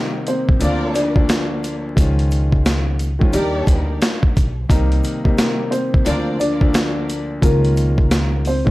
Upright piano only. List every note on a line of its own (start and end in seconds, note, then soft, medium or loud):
0.00 0.23 A#3 medium
0.00 0.23 A#4 loud
0.28 0.92 C4 medium
0.28 0.92 C5 medium
0.95 1.26 D4 medium
0.95 1.25 D5 medium
4.70 5.68 A#3 medium
4.70 5.68 A#4 medium
5.71 6.36 C4 medium
5.71 6.36 C5 medium
6.40 6.71 D4 medium
6.40 6.71 D5 medium
7.43 8.41 A#3 medium
7.43 8.41 A#4 loud
8.47 8.71 C4 medium
8.47 8.71 C5 medium